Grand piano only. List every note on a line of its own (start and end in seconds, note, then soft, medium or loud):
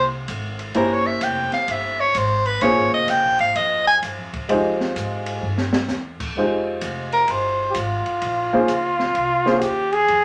0.75 2.06 A#3 medium
0.75 2.06 C#4 medium
0.75 2.06 E4 medium
0.75 2.06 G4 medium
0.75 2.06 C5 medium
2.62 3.93 A#3 medium
2.62 3.93 C#4 medium
2.62 3.93 F4 medium
2.62 3.94 G#4 medium
2.62 3.93 C5 medium
4.49 5.42 G#3 medium
4.49 5.42 D#4 medium
4.49 5.43 F4 medium
4.49 5.43 G4 medium
4.49 5.43 C5 medium
6.37 7.67 G#3 medium
6.37 7.67 D#4 medium
6.37 7.67 F4 soft
6.37 7.68 G4 soft
6.37 7.68 C5 medium
8.53 8.67 A#3 medium
8.53 8.68 C#4 medium
8.53 8.68 F4 medium
8.53 8.68 G#4 medium
8.53 8.68 C5 medium
9.46 9.60 A#3 medium
9.46 9.60 C#4 medium
9.46 9.61 F4 medium
9.46 9.61 G#4 medium
9.46 9.61 C5 medium